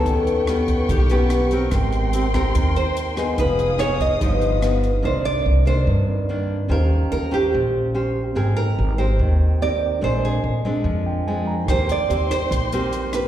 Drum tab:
HH |xxxxxxxx|xxxxxxxx|xxxxxxxx|--------|
SD |--r---r-|r--r---r|--r---r-|--------|
BD |o--oo---|o--oo---|o--oo---|--------|

HH |--------|--------|--------|xxxxxxxx|
SD |--------|--------|--------|r--r---r|
BD |--------|--------|--------|o---o---|